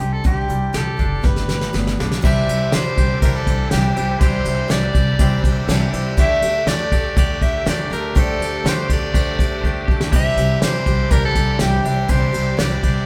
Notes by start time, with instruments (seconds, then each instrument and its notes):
Already playing: soprano saxophone G4
0.00 upright bass C2, clean electric guitar C3, twelve-string acoustic guitar D4 E4 G4, closed hi-hat
0.13 soprano saxophone A4
0.24 upright bass C2, twelve-string acoustic guitar C3 G3 D4 E4 G4, soprano saxophone G4, kick, closed hi-hat
0.48 upright bass C2, clean electric guitar G3, twelve-string acoustic guitar D4 E4 G4, closed hi-hat
0.73 upright bass C2, twelve-string acoustic guitar C3 G3 D4 E4 G4, snare, closed hi-hat
0.77 soprano saxophone A4
0.98 upright bass F#1, twelve-string acoustic guitar D4 E4, kick, closed hi-hat
1.21 upright bass G1, clean electric guitar G3, twelve-string acoustic guitar A3 B3 D4 G4, soprano saxophone B4, kick, snare
1.36 snare
1.48 upright bass G1, clean electric guitar G3, twelve-string acoustic guitar A3 B3 D4 G4, snare
1.61 snare
1.73 upright bass G1, twelve-string acoustic guitar G2 D3 A3 B3 D4 G4, snare
1.87 snare
1.97 upright bass B1, twelve-string acoustic guitar A3 B3 D4 G4, snare
2.12 snare
2.21 upright bass C2, twelve-string acoustic guitar C3 E3 G3 C4 D4 G4, grand piano E4 C5 D5, tonewheel organ C5 E5 D6, soprano saxophone E5, kick, crash
2.27 clean electric guitar G4
2.48 upright bass C2, twelve-string acoustic guitar G3 C4 D4 G4, ride
2.72 upright bass C2, clean electric guitar E3, twelve-string acoustic guitar G3 C4 D4 G4, soprano saxophone C5, snare, ride
2.97 upright bass C2, twelve-string acoustic guitar G3 C4 D4 G4, kick, ride
3.21 upright bass C2, twelve-string acoustic guitar C3 E3 G3 C4 D4 G4, grand piano E4 C5 E5, soprano saxophone A#4, kick, ride
3.35 soprano saxophone A4
3.46 upright bass C2, twelve-string acoustic guitar G3 C4 D4 G4, kick, ride
3.71 upright bass C2, clean electric guitar E3 G4, twelve-string acoustic guitar G3 C4 D4, soprano saxophone G4, snare, ride
3.95 upright bass C2, twelve-string acoustic guitar C4 D4 G4, grand piano E4 C5 D5, ride
3.99 twelve-string acoustic guitar G3
4.20 upright bass C2, twelve-string acoustic guitar C3 E3 G3 C4 D4 G4, grand piano E4 C5 D5, soprano saxophone C5, tonewheel organ E6, kick, ride
4.45 upright bass C2, twelve-string acoustic guitar G3 C4 D4 G4, ride
4.68 upright bass C2, clean electric guitar E3, twelve-string acoustic guitar G3 C4 D4 G4, soprano saxophone D5, snare, ride
4.93 upright bass C2, twelve-string acoustic guitar G3 C4 D4 G4, kick, ride
5.19 upright bass C2, twelve-string acoustic guitar C3 E3 G3 C4 D4 G4, grand piano E4 C5 E5, kick, ride
5.43 upright bass C2, twelve-string acoustic guitar G3 C4 D4 G4, kick, ride
5.68 upright bass C2, clean electric guitar E3, twelve-string acoustic guitar G3 C4 D4 G4, grand piano A5, snare, ride
5.92 upright bass C2, twelve-string acoustic guitar G3 C4 D4 G4, grand piano E4 C5 D5, ride
6.17 upright bass D2, twelve-string acoustic guitar D3 G3 D4 G4 A4, clean electric guitar A3, grand piano G4 A4 D5, tonewheel organ A4 G5 D6, soprano saxophone E5, kick, ride
6.42 upright bass D2, twelve-string acoustic guitar D4 G4 A4, ride
6.66 upright bass D2, clean electric guitar D3 A3, twelve-string acoustic guitar G3 D4 G4, soprano saxophone D5, snare, ride
6.70 twelve-string acoustic guitar A4
6.92 upright bass D2, clean electric guitar A3, twelve-string acoustic guitar D4 G4 A4, kick, ride
7.16 upright bass D2, twelve-string acoustic guitar D3 G3 D4 G4 A4, clean electric guitar A3, grand piano G4 A4 D5, soprano saxophone D5, kick, ride
7.41 upright bass D2, twelve-string acoustic guitar D4 G4 A4, soprano saxophone E5, kick, ride
7.65 upright bass D2, clean electric guitar D3 A3, twelve-string acoustic guitar G3 D4 G4 A4, soprano saxophone D5, snare, ride
7.90 upright bass D2, clean electric guitar A3, twelve-string acoustic guitar D4 G4 A4, grand piano G4 A4 E5, soprano saxophone A#4, ride
8.15 upright bass D2, twelve-string acoustic guitar D3 G3 D4 G4 A4, clean electric guitar A3, grand piano G4 A4 C5, soprano saxophone A4, kick, ride
8.39 upright bass D2, twelve-string acoustic guitar D4 G4 A4, ride
8.64 upright bass D2, clean electric guitar D3 A3, twelve-string acoustic guitar G3 D4 G4 A4, snare, ride
8.69 soprano saxophone C5
8.90 upright bass D2, clean electric guitar A3, twelve-string acoustic guitar D4 G4 A4, soprano saxophone D5, kick, ride
9.13 upright bass D2, twelve-string acoustic guitar D3 G3 D4 G4 A4, clean electric guitar A3, grand piano G4 A4 C5, kick, ride
9.39 upright bass D2, twelve-string acoustic guitar D4 G4 A4, kick, ride
9.61 upright bass D2, clean electric guitar D3 A3, twelve-string acoustic guitar G3, kick
9.65 twelve-string acoustic guitar D4 G4 A4
9.85 upright bass D2, clean electric guitar A3 D4 G4, grand piano G4 A4 D5, kick
9.91 twelve-string acoustic guitar D4 G4 A4
10.01 snare
10.12 upright bass C2, twelve-string acoustic guitar C3 E3 G3 C4 D4 G4, grand piano E4 C5 D5, tonewheel organ C5 E5, soprano saxophone E5, kick, crash
10.36 upright bass C2, twelve-string acoustic guitar C4 D4 G4, ride
10.41 twelve-string acoustic guitar G3
10.60 upright bass C2, clean electric guitar E3, twelve-string acoustic guitar G3 C4, soprano saxophone C5, snare, ride
10.65 twelve-string acoustic guitar D4 G4
10.86 upright bass C2, twelve-string acoustic guitar G3 C4 D4 G4, kick, ride
11.10 upright bass C2, twelve-string acoustic guitar C3 E3 G3 C4 D4 G4, grand piano E4 C5 D5, soprano saxophone A#4, kick, ride
11.25 soprano saxophone A4
11.35 upright bass C2, twelve-string acoustic guitar G3 C4 D4 G4, kick, ride
11.59 upright bass C2, clean electric guitar E3, twelve-string acoustic guitar G3 C4 D4 G4, soprano saxophone G4, snare, ride
11.85 upright bass C2, twelve-string acoustic guitar G3 C4 D4 G4, grand piano E4 C5 E5, ride
12.08 upright bass C2, twelve-string acoustic guitar C3 E3 G3 C4 D4 G4, grand piano E4 C5 D5, soprano saxophone C5, kick, ride
12.32 upright bass C2, twelve-string acoustic guitar G3 C4 D4 G4, ride
12.57 upright bass C2, clean electric guitar E3, twelve-string acoustic guitar G3 C4 D4 G4, soprano saxophone D5, snare, ride
12.83 upright bass C2, twelve-string acoustic guitar G3 C4 D4 G4, kick, ride